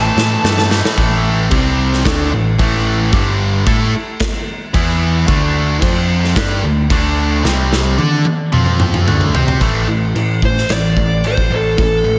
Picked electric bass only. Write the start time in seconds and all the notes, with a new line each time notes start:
0.16 A2
0.44 G2
0.98 A1
1.51 C2
2.05 D2
2.32 A1
2.59 A1
3.13 G1
3.67 A2
4.74 E2
5.28 D2
5.82 F2
6.37 G2
6.63 D2
6.90 D2
7.44 C2
7.99 D3
8.53 F2
9.07 D2
9.34 C3
9.61 A1
9.88 A1
10.15 A2
10.70 A1
10.97 A1
11.24 A1
11.51 A1
11.78 A1
12.05 A1